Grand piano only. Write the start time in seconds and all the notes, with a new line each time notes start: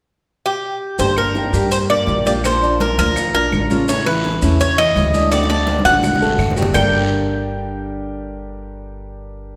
0.99 G3 G4
1.17 A#3 A#4
1.54 G3 G4
1.90 A#3 A#4
2.26 F4 F5
2.62 D4 D5
2.98 F3 F4
3.34 D4 D5
3.70 C#3 C#4
3.88 C#3 C#4
4.06 E3 E4
4.42 C#3 C#4
4.78 E3 E4
5.14 D4 D5
5.50 A3 A4
5.85 D3 D4
6.22 A3 A4
6.57 G3 G4
6.75 G3 D4 G4 A#4 D5 G5